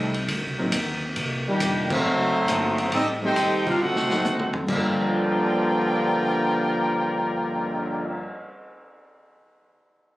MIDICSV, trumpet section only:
0, 0, Header, 1, 2, 480
1, 0, Start_track
1, 0, Key_signature, -2, "minor"
1, 0, Tempo, 440205
1, 1265, Time_signature, 4, 2, 24, 8
1, 11087, End_track
2, 0, Start_track
2, 0, Title_t, "Trumpet section"
2, 0, Program_c, 0, 61
2, 0, Note_on_c, 0, 55, 71
2, 0, Note_on_c, 0, 60, 75
2, 0, Note_on_c, 0, 63, 74
2, 0, Note_on_c, 0, 69, 90
2, 143, Note_off_c, 0, 69, 0
2, 144, Note_off_c, 0, 60, 0
2, 145, Note_off_c, 0, 55, 0
2, 147, Note_off_c, 0, 63, 0
2, 1625, Note_on_c, 0, 67, 92
2, 1631, Note_on_c, 0, 58, 77
2, 1632, Note_on_c, 0, 62, 78
2, 2056, Note_off_c, 0, 67, 0
2, 2059, Note_off_c, 0, 58, 0
2, 2060, Note_off_c, 0, 62, 0
2, 2100, Note_on_c, 0, 66, 94
2, 2101, Note_on_c, 0, 63, 87
2, 2102, Note_on_c, 0, 57, 87
2, 2107, Note_on_c, 0, 72, 97
2, 3198, Note_off_c, 0, 66, 0
2, 3199, Note_off_c, 0, 63, 0
2, 3200, Note_off_c, 0, 57, 0
2, 3202, Note_off_c, 0, 72, 0
2, 3208, Note_on_c, 0, 75, 109
2, 3209, Note_on_c, 0, 60, 89
2, 3210, Note_on_c, 0, 69, 89
2, 3216, Note_on_c, 0, 67, 93
2, 3350, Note_off_c, 0, 75, 0
2, 3351, Note_off_c, 0, 60, 0
2, 3352, Note_off_c, 0, 69, 0
2, 3356, Note_off_c, 0, 67, 0
2, 3542, Note_on_c, 0, 69, 96
2, 3543, Note_on_c, 0, 79, 105
2, 3545, Note_on_c, 0, 63, 101
2, 3546, Note_on_c, 0, 72, 97
2, 3975, Note_off_c, 0, 69, 0
2, 3975, Note_off_c, 0, 79, 0
2, 3976, Note_off_c, 0, 63, 0
2, 3976, Note_off_c, 0, 72, 0
2, 3999, Note_on_c, 0, 67, 87
2, 4002, Note_on_c, 0, 77, 97
2, 4005, Note_on_c, 0, 70, 86
2, 4007, Note_on_c, 0, 62, 91
2, 4148, Note_off_c, 0, 67, 0
2, 4150, Note_off_c, 0, 77, 0
2, 4151, Note_off_c, 0, 70, 0
2, 4152, Note_off_c, 0, 62, 0
2, 4158, Note_on_c, 0, 78, 94
2, 4159, Note_on_c, 0, 72, 85
2, 4161, Note_on_c, 0, 63, 82
2, 4162, Note_on_c, 0, 69, 80
2, 4959, Note_off_c, 0, 72, 0
2, 4959, Note_off_c, 0, 78, 0
2, 4960, Note_off_c, 0, 63, 0
2, 4961, Note_off_c, 0, 69, 0
2, 5117, Note_on_c, 0, 70, 83
2, 5118, Note_on_c, 0, 65, 91
2, 5119, Note_on_c, 0, 74, 82
2, 5119, Note_on_c, 0, 79, 95
2, 9003, Note_off_c, 0, 70, 0
2, 9005, Note_off_c, 0, 65, 0
2, 9005, Note_off_c, 0, 79, 0
2, 9006, Note_off_c, 0, 74, 0
2, 11087, End_track
0, 0, End_of_file